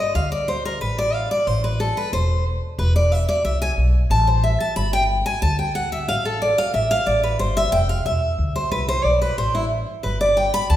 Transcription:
0.00 0.15 D#5 loud
0.15 0.59 D2 medium
0.15 0.31 F5 loud
0.32 0.47 D5 medium
0.48 0.65 C5 medium
0.65 0.81 A#4 medium
0.81 1.26 A1 medium
0.81 0.97 B4 loud
0.98 1.14 D5 loud
1.14 1.30 F5 loud
1.31 1.47 D5 loud
1.47 1.91 A1 loud
1.47 1.63 C5 medium
1.64 1.79 B4 medium
1.80 1.96 A4 medium
1.97 2.12 B4 loud
2.13 2.57 E1 medium
2.13 2.44 C5 medium
2.78 3.23 E1 loud
2.78 2.95 B4 medium
2.96 3.12 D5 medium
3.12 3.28 E5 loud
3.29 3.44 D5 loud
3.45 3.73 C2 medium
3.45 3.61 E5 medium
3.62 3.71 G#5 loud
3.77 4.05 B1 medium
4.10 4.55 A1 loud
4.10 4.27 A5 medium
4.27 4.43 C5 medium
4.43 4.60 E5 medium
4.60 4.76 A5 loud
4.76 5.21 G1 loud
4.76 4.93 B5 loud
4.93 5.03 G5 loud
5.26 5.41 G#5 loud
5.42 5.87 D2 medium
5.42 5.58 A5 loud
5.59 5.74 G5 medium
5.75 5.92 F#5 loud
5.92 6.08 E5 loud
6.08 6.53 A1 medium
6.08 6.25 F5 loud
6.25 6.41 A4 medium
6.42 6.58 D5 medium
6.58 6.73 F5 loud
6.74 6.96 A1 medium
6.74 6.90 E5 medium
6.91 7.06 F5 loud
7.06 7.35 A1 medium
7.06 7.23 D5 medium
7.23 7.39 B4 medium
7.39 7.68 G1 medium
7.39 7.56 C5 loud
7.57 7.72 E5 loud
7.72 8.01 F1 medium
7.72 7.89 G5 loud
7.89 8.05 F5 loud
8.06 8.28 E1 medium
8.06 8.52 E5 medium
8.39 8.67 D2 medium
8.56 8.71 C5 loud
8.71 9.00 C2 medium
8.71 8.88 B4 loud
8.88 9.04 C5 loud
9.04 9.33 B1 medium
9.04 9.21 D5 loud
9.22 9.37 B4 loud
9.38 9.82 A1 medium
9.38 9.55 C5 loud
9.55 9.64 E4 medium
10.03 10.49 G1 medium
10.03 10.20 B4 medium
10.21 10.36 D5 loud
10.37 10.53 G5 medium
10.54 10.69 B5 loud
10.70 10.77 D2 medium
10.70 10.77 A5 loud

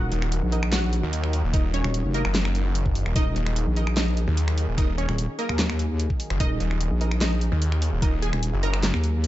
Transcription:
0.00 0.10 D#1 loud
0.00 9.27 D#3 medium
0.00 9.27 F#3 medium
0.00 9.27 A#3 medium
0.00 9.27 D#4 medium
0.00 0.65 F#4 medium
0.00 3.14 F#4 medium
0.00 0.65 F#5 loud
0.12 0.41 D#1 loud
0.12 closed hi-hat medium
0.22 finger snap medium
0.32 closed hi-hat medium
0.42 1.02 A#1 loud
0.52 0.62 D#4 medium
0.52 0.62 A#4 medium
0.52 0.62 D#5 medium
0.52 closed hi-hat medium
0.63 finger snap medium
0.72 0.99 F#4 medium
0.72 0.99 F#5 medium
0.72 snare loud
0.72 clap medium
0.72 closed hi-hat medium
0.93 closed hi-hat medium
1.03 1.42 D#2 medium
1.13 closed hi-hat medium
1.24 finger snap medium
1.33 open hi-hat medium
1.44 1.83 D#1 loud
1.54 1.63 D#4 medium
1.54 1.63 A#4 medium
1.54 1.63 D#5 medium
1.54 kick loud
1.54 closed hi-hat medium
1.74 2.01 C#4 medium
1.74 2.01 C#5 medium
1.74 closed hi-hat medium
1.84 2.03 D#1 loud
1.84 finger snap medium
1.94 closed hi-hat medium
2.05 2.23 F1 loud
2.14 3.08 A#3 medium
2.14 2.24 D#4 medium
2.14 2.24 A#4 medium
2.14 3.08 A#4 loud
2.14 2.24 D#5 medium
2.14 closed hi-hat medium
2.25 3.04 F#1 medium
2.25 finger snap medium
2.35 snare loud
2.35 clap medium
2.35 closed hi-hat medium
2.45 finger snap medium
2.55 closed hi-hat medium
2.75 closed hi-hat medium
2.86 kick medium
2.95 open hi-hat medium
3.06 3.14 D#1 medium
3.06 finger snap medium
3.16 3.34 D#1 loud
3.16 3.25 D#4 medium
3.16 3.89 D#4 medium
3.16 9.27 G#4 medium
3.16 3.25 A#4 medium
3.16 3.89 D#5 loud
3.16 3.25 D#5 loud
3.16 kick loud
3.16 closed hi-hat medium
3.36 3.65 D#1 loud
3.36 closed hi-hat medium
3.46 finger snap medium
3.56 closed hi-hat medium
3.67 4.26 A#1 loud
3.76 3.86 D#4 medium
3.76 3.86 A#4 medium
3.76 3.86 D#5 medium
3.76 closed hi-hat medium
3.87 finger snap medium
3.97 4.23 D#4 medium
3.97 4.23 D#5 medium
3.97 snare loud
3.97 clap medium
3.97 closed hi-hat medium
4.17 closed hi-hat medium
4.28 4.66 D#2 loud
4.37 closed hi-hat medium
4.48 finger snap medium
4.58 open hi-hat medium
4.68 5.07 D#1 loud
4.78 4.87 D#4 medium
4.78 4.87 A#4 medium
4.78 4.87 D#5 medium
4.78 kick loud
4.78 closed hi-hat medium
4.98 5.25 C#4 medium
4.98 5.25 C#5 medium
4.98 closed hi-hat medium
5.09 5.27 D#1 loud
5.09 finger snap medium
5.18 closed hi-hat medium
5.39 6.32 A#3 medium
5.39 5.48 D#4 medium
5.39 5.48 A#4 medium
5.39 6.32 A#4 loud
5.39 5.48 D#5 medium
5.39 closed hi-hat medium
5.49 6.08 D#2 medium
5.49 finger snap medium
5.59 snare loud
5.59 clap medium
5.59 closed hi-hat medium
5.70 finger snap medium
5.79 closed hi-hat medium
6.00 closed hi-hat medium
6.10 kick medium
6.20 open hi-hat loud
6.30 6.39 F#1 loud
6.30 finger snap medium
6.40 6.59 D#1 loud
6.40 6.50 D#4 medium
6.40 7.13 D#4 medium
6.40 6.50 A#4 medium
6.40 6.50 D#5 medium
6.40 7.13 D#5 loud
6.40 kick loud
6.40 closed hi-hat medium
6.60 6.89 D#1 loud
6.60 closed hi-hat medium
6.71 finger snap medium
6.81 closed hi-hat medium
6.91 7.50 A#1 loud
7.01 7.10 D#4 medium
7.01 7.10 A#4 medium
7.01 7.10 D#5 medium
7.01 closed hi-hat medium
7.11 finger snap medium
7.21 7.48 D#4 medium
7.21 7.48 D#5 medium
7.21 snare loud
7.21 clap medium
7.21 closed hi-hat medium
7.41 closed hi-hat medium
7.52 7.91 D#2 loud
7.62 closed hi-hat medium
7.72 finger snap medium
7.82 open hi-hat loud
7.92 8.31 D#1 loud
8.02 8.12 D#4 medium
8.02 8.12 A#4 medium
8.02 8.12 D#5 medium
8.02 kick loud
8.02 closed hi-hat medium
8.22 8.49 G#4 medium
8.22 8.49 G#5 medium
8.22 closed hi-hat medium
8.33 8.52 D#1 loud
8.33 finger snap medium
8.43 closed hi-hat medium
8.53 8.92 F#1 loud
8.63 8.73 D#4 medium
8.63 8.73 A#4 medium
8.63 9.27 A#4 medium
8.63 8.73 D#5 medium
8.63 9.27 A#5 medium
8.63 closed hi-hat medium
8.74 finger snap medium
8.83 snare loud
8.83 clap medium
8.83 closed hi-hat medium
8.94 9.27 D#2 loud
8.94 finger snap medium
9.04 closed hi-hat medium
9.24 closed hi-hat medium

